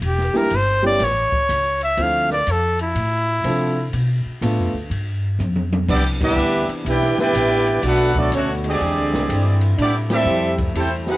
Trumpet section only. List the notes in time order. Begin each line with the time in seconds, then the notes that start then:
5.90 B3 E4 G4 D5
6.23 D4 G4 B4 E5
6.88 E4 B4 D5 G5
7.20 E4 B4 D5 G5
7.87 D4 A4 B4 F#5
8.18 B3 F#4 A4 D5
8.35 A3 D4 F#4 C#5
8.68 C4 G4 G#4 D5
9.81 B3 E4 G4 D5
10.12 C4 G4 A4 E5
10.77 E4 A4 C5 G5
11.09 E4 A4 C5 G5